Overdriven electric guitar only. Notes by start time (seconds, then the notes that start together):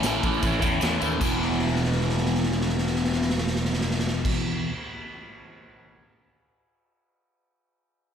0.03 A2 E3 A3 C#4
0.08 E4
0.24 C#4 E4
0.28 A3
0.42 E3 A3 C#4
0.47 E4
0.61 E3 A3 C#4 E4
0.65 A2
0.80 E3 A3 C#4
0.85 E4
1.00 C#4 E4
1.05 A3
1.20 E2 B2 E3